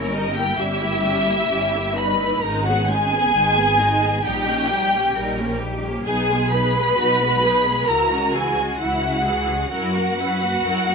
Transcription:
Already playing: G1 A#3 C#4 E4 A#4 C#5
0.10 G3 C#4 D#4 D#5
0.33 A#3 E4 G4 G5
0.57 G1 G3 C#4 E4 G4 E5
0.81 A#3 E4
1.04 G3 C#4
1.27 A#3 E4
1.50 G1 G3 C#4 G4
1.73 A#3 E4
1.95 G3 C#4 D#4 B4 B5
2.20 A#3 E4
2.40 G#1 G#3 C#4 D#4 A#4 A#5
2.64 B3 F#4 G#4 F#5
2.88 G#3 D#4 G#4 G#5
3.13 B3 G#4
3.32 G#1 G#3 B3 D#4
3.56 B3 G#4
3.78 G#3 D#4
4.03 B3 G#4
4.23 A#1 G3 D#4 G4 G5
4.47 A#3 C#4
4.68 G3 D#4 G4
4.94 A#3 C#4
5.13 A#1 G3 D#4 A#4
5.39 A#3 C#4
5.59 G3 D#4 G4
5.85 A#3 C#4
6.06 B1 B3 D#4 G#4 G#5
6.30 G#3 B3
6.51 B3 D#4 B4 B5
6.75 G#3 B3
6.97 B1 B3 D#4 F#4
7.22 G#3 B3
7.44 B3 D#4 G#4
7.67 G#3 B3
7.88 C#2 E3 E4 F#4 A#4 A#5
8.13 G#3 C#4
8.33 E3 E4 G#4 G#5
8.58 G#3 C#4
8.78 C#2 E3 E4 F#4 F#5
9.02 G#3 C#4
9.25 E3 E4 G#4
9.50 G#3 C#4
9.70 F#2 C#4 E4 F#4 A#4 F#5
9.96 A#3 F#4
10.18 C#4 E4 B4
10.42 A#3 F#4
10.63 F#2 C#4 E4 A#4
10.89 A#3 F#4

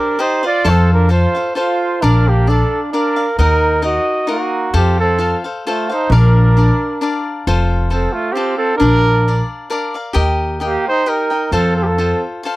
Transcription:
Already playing: D4 G4 A#4 C5 D5
0.19 D#4 G4 C5 D5 D#5
0.43 F4 C5 D5 D#5
0.47 D5
0.64 F2 F4 A4 C5 F5
0.69 C4 A4
0.93 D4 A#4
1.09 F4 A4 C5 F5
1.35 A4 C5 F5
1.55 F4 A4 C5 F5
1.60 F4
2.02 A#1 D4 A#4 D5 F5
2.28 A#3 G4
2.47 D4 A4 D5 F5
2.92 D4 A#4 D5 F5
3.16 A#4 D5 F5
3.38 D#2 D#4 A#4 D#5 F#5
3.82 D#4 F#4 A#4 D#5 F#5
4.27 A#3 D#4 F#4 A#4 D#5 F#5
4.74 F2 C4 F4 G4 A4 C5 F5
5.00 C4 A4
5.19 F4 A4 C5 F5
5.44 A4 C5 F5
5.67 A3 F4 A4 C5 F5
5.89 D#4 A4 C5 F5
6.10 A#1 D4 A#4 D5 F5
6.14 D4
6.57 D4 A#4 D5 F5
7.01 D4 A#4 D5 F5
7.47 F1 F4 A4 C5 F5
7.90 C4 F4 A4 C5 F5
8.13 A3 F4
8.32 C4 F4 G4
8.37 A4 C5 F5
8.57 C4 A4
8.77 D4 A#4
8.81 A#1 A#4 D5 F5
9.28 D4 A#4 D5 F5
9.70 D4 A#4 D5 F5
9.94 A#4 D5 F5
10.13 D#2 G4 A#4 D#5 G5
10.60 G4 A#4 D#5 G5
10.65 A#3 G4
10.88 D#4 C5
11.06 D#4 G4 A#4 D#5 G5
11.30 A#4 D#5 G5
11.52 F2 C4 F4 A4 C5 F5
11.76 C4 A4
11.83 A#3 G4 A4
11.92 C4
11.98 F4 A4 C5 F5
12.43 F4 A4 C5 F5

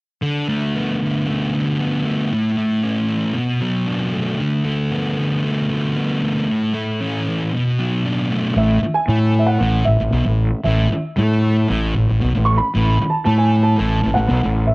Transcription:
0.22 D3
0.48 A3
0.74 B3
1.01 D3
1.28 A3
1.54 D3
1.79 B3
2.05 A3
2.32 A2
2.58 A3
2.83 C#4
3.08 E3
3.34 B2
3.61 F#3
3.87 D4
4.13 A3
4.40 D3
4.65 A3
4.91 B3
5.18 D3
5.44 A3
5.70 D3
5.96 B3
6.22 A3
6.48 A2
6.74 A3
7.01 C#4
7.27 E3
7.53 B2
7.79 F#3
8.05 D4
8.30 A3
8.56 A1 A2 E5
8.82 muted fingered electric bass stroke, muted distorted electric guitar stroke
8.94 G#5
9.08 A2 A3
9.39 E5
9.47 F#5
9.61 A1 A2
9.85 A1 A2 E5
10.00 A1 A2
10.13 B1 B2
10.26 A1 A2
10.64 A1 A2 E5
10.91 muted distorted electric guitar stroke, muted fingered electric bass stroke
11.17 A2 A3
11.68 A1 A2
11.96 A1 A2
12.09 A1 A2
12.21 B1 B2
12.35 A1 A2
12.45 C#6
12.57 B5
12.75 A1 A2
13.00 muted distorted electric guitar stroke, muted fingered electric bass stroke
13.10 A5
13.25 A2 A3 A5
13.38 G#5
13.63 A5
13.77 A1 A2
14.03 A1 A2
14.14 A2 F#5
14.18 A1
14.29 B1 B2
14.43 A1 A2
14.67 E5

